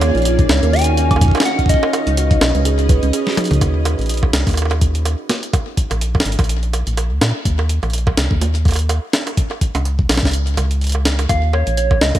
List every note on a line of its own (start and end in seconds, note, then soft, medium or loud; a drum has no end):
0.00 0.12 D#2 loud
0.00 1.67 D#4 medium
0.00 0.75 C#5 loud
0.00 1.67 C#5 medium
0.00 1.67 F5 medium
0.00 closed hi-hat medium
0.00 high bongo medium
0.15 0.47 A#1 medium
0.15 0.22 D#4 medium
0.15 closed hi-hat soft
0.17 closed hi-hat soft
0.22 closed hi-hat soft
0.25 0.35 F4 medium
0.25 closed hi-hat medium
0.39 0.49 D#4 medium
0.39 kick loud
0.39 closed hi-hat soft
0.49 0.61 C#2 loud
0.49 0.59 C#4 medium
0.49 snare loud
0.63 1.32 D#2 medium
0.63 0.70 A#4 medium
0.63 closed hi-hat soft
0.73 0.79 F#4 medium
0.73 1.47 G#5 loud
0.73 closed hi-hat soft
0.76 closed hi-hat soft
0.79 closed hi-hat medium
0.81 closed hi-hat medium
0.84 0.91 D#4 medium
0.84 closed hi-hat medium
0.97 1.07 C#4 medium
0.97 closed hi-hat medium
1.11 1.21 D#4 medium
1.11 kick loud
1.11 closed hi-hat soft
1.11 cowbell medium
1.16 high bongo medium
1.21 1.31 F4 medium
1.21 kick loud
1.21 closed hi-hat medium
1.25 kick medium
1.28 kick medium
1.31 1.42 D#4 medium
1.31 kick medium
1.31 closed hi-hat soft
1.31 high bongo medium
1.37 snare loud
1.37 high bongo medium
1.42 1.55 C#4 medium
1.42 1.69 F#5 loud
1.42 closed hi-hat medium
1.42 high bongo medium
1.45 high bongo soft
1.59 kick soft
1.59 closed hi-hat soft
1.66 1.82 C#4 medium
1.66 kick medium
1.69 3.60 C#4 medium
1.69 3.60 B4 medium
1.69 3.09 D#5 loud
1.69 3.60 D#5 medium
1.69 kick medium
1.69 closed hi-hat loud
1.74 kick medium
1.83 high bongo medium
1.93 closed hi-hat medium
1.93 high bongo medium
2.07 2.39 C#2 medium
2.07 2.14 D#4 medium
2.07 closed hi-hat soft
2.17 2.27 F#4 medium
2.17 closed hi-hat loud
2.31 2.41 D#4 medium
2.31 kick loud
2.31 closed hi-hat soft
2.41 2.53 B1 loud
2.41 2.51 C#4 medium
2.41 snare loud
2.41 high bongo medium
2.55 3.00 C#2 medium
2.55 2.62 B4 medium
2.55 closed hi-hat soft
2.65 2.71 G#4 medium
2.65 closed hi-hat loud
2.79 2.83 D#4 medium
2.79 closed hi-hat soft
2.89 3.02 B4 loud
2.89 kick loud
2.89 closed hi-hat medium
3.03 3.12 C#2 medium
3.03 3.10 C#4 loud
3.03 closed hi-hat soft
3.13 3.23 G#4 loud
3.13 closed hi-hat loud
3.27 3.34 F#4 loud
3.27 snare medium
3.27 closed hi-hat soft
3.29 closed hi-hat soft
3.32 closed hi-hat soft
3.35 closed hi-hat soft
3.37 3.47 D#4 loud
3.37 closed hi-hat medium
3.37 mid tom medium
3.41 closed hi-hat soft
3.44 closed hi-hat soft
3.44 closed hi-hat medium
3.47 3.60 C#2 loud
3.47 closed hi-hat soft
3.51 closed hi-hat soft
3.51 mid tom medium
3.53 closed hi-hat soft
3.61 3.96 D#2 loud
3.61 kick loud
3.61 closed hi-hat medium
3.61 high bongo medium
3.85 closed hi-hat medium
3.85 high bongo medium
3.99 4.31 A#1 medium
3.99 closed hi-hat soft
4.01 closed hi-hat soft
4.06 closed hi-hat soft
4.09 closed hi-hat medium
4.14 closed hi-hat soft
4.17 closed hi-hat soft
4.23 kick medium
4.23 high bongo medium
4.33 4.45 C#2 loud
4.33 snare loud
4.33 closed hi-hat medium
4.47 5.16 D#2 medium
4.47 kick loud
4.47 closed hi-hat medium
4.47 high bongo soft
4.49 closed hi-hat soft
4.49 high bongo soft
4.51 closed hi-hat soft
4.53 closed hi-hat soft
4.53 high bongo soft
4.55 closed hi-hat soft
4.57 closed hi-hat medium
4.57 high bongo soft
4.62 high bongo soft
4.65 high bongo soft
4.71 closed hi-hat soft
4.71 high bongo medium
4.81 kick loud
4.81 closed hi-hat medium
4.95 closed hi-hat medium
5.05 closed hi-hat medium
5.05 high bongo medium
5.29 snare loud
5.29 closed hi-hat medium
5.29 high bongo medium
5.43 closed hi-hat medium
5.53 kick loud
5.53 closed hi-hat medium
5.53 high bongo medium
5.77 kick medium
5.77 closed hi-hat medium
5.91 6.23 A#1 medium
5.91 closed hi-hat medium
5.91 high bongo medium
6.01 closed hi-hat medium
6.15 kick medium
6.15 high bongo medium
6.20 snare loud
6.25 6.37 G#1 loud
6.25 closed hi-hat medium
6.32 closed hi-hat medium
6.39 6.84 A#1 medium
6.39 kick loud
6.39 closed hi-hat medium
6.39 high bongo medium
6.44 closed hi-hat soft
6.49 closed hi-hat medium
6.63 closed hi-hat soft
6.73 closed hi-hat medium
6.73 high bongo soft
6.87 7.12 A#1 medium
6.87 closed hi-hat medium
6.97 closed hi-hat medium
6.97 high bongo medium
7.11 7.20 D2 medium
7.21 7.33 A#2 loud
7.21 snare loud
7.21 closed hi-hat medium
7.21 high bongo medium
7.45 7.80 D#2 loud
7.45 kick loud
7.45 closed hi-hat medium
7.59 high bongo medium
7.69 closed hi-hat medium
7.83 8.15 A#1 medium
7.83 closed hi-hat soft
7.83 high bongo soft
7.90 closed hi-hat soft
7.93 closed hi-hat medium
7.98 closed hi-hat soft
8.07 kick medium
8.07 high bongo medium
8.17 8.29 C#2 loud
8.17 snare loud
8.17 closed hi-hat medium
8.31 9.00 D#2 medium
8.31 kick loud
8.41 closed hi-hat medium
8.41 high bongo medium
8.55 closed hi-hat soft
8.65 kick loud
8.65 closed hi-hat soft
8.65 high bongo soft
8.68 closed hi-hat soft
8.68 high bongo soft
8.71 closed hi-hat medium
8.71 high bongo soft
8.73 closed hi-hat medium
8.73 high bongo soft
8.76 closed hi-hat medium
8.79 closed hi-hat medium
8.89 closed hi-hat medium
8.89 high bongo medium
9.13 snare loud
9.13 closed hi-hat medium
9.27 closed hi-hat medium
9.27 high bongo soft
9.37 kick loud
9.37 closed hi-hat medium
9.51 high bongo soft
9.61 kick medium
9.61 closed hi-hat medium
9.75 10.07 C#2 medium
9.75 closed hi-hat medium
9.75 high bongo medium
9.85 closed hi-hat medium
9.99 kick medium
10.09 10.21 B1 loud
10.09 snare loud
10.09 closed hi-hat medium
10.09 high bongo soft
10.12 closed hi-hat medium
10.12 high bongo soft
10.15 snare loud
10.15 closed hi-hat medium
10.15 high bongo soft
10.20 10.57 C#2 medium
10.20 kick loud
10.20 closed hi-hat soft
10.23 closed hi-hat soft
10.25 snare medium
10.25 closed hi-hat soft
10.27 closed hi-hat soft
10.29 closed hi-hat soft
10.31 closed hi-hat soft
10.33 closed hi-hat medium
10.47 closed hi-hat soft
10.57 11.27 C#2 medium
10.57 closed hi-hat medium
10.57 high bongo medium
10.71 closed hi-hat medium
10.81 closed hi-hat soft
10.84 closed hi-hat soft
10.87 closed hi-hat soft
10.89 closed hi-hat medium
10.92 closed hi-hat medium
10.92 high bongo soft
11.05 snare loud
11.05 closed hi-hat medium
11.19 closed hi-hat medium
11.19 high bongo soft
11.29 11.64 D#2 loud
11.29 12.19 D#4 medium
11.29 12.19 F#4 medium
11.29 12.19 C#5 medium
11.29 12.19 D#5 medium
11.29 11.55 F5 loud
11.29 kick loud
11.29 closed hi-hat medium
11.29 high bongo soft
11.53 11.77 C#5 medium
11.53 high bongo medium
11.67 11.99 A#1 medium
11.67 closed hi-hat soft
11.77 12.03 C#5 medium
11.77 closed hi-hat medium
11.91 kick medium
11.91 high bongo soft
12.01 12.13 C#2 loud
12.01 12.19 D#5 medium
12.01 snare loud
12.15 12.19 D#2 medium
12.15 kick loud
12.15 closed hi-hat medium
12.15 high bongo soft